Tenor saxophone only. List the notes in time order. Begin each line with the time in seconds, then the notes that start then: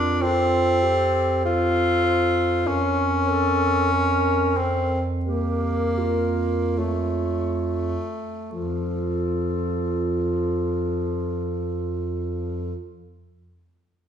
Already playing: D4
0.22 C4
1.45 F4
2.67 C#4
4.57 C4
5.25 A#3
6.78 A3
8.52 F3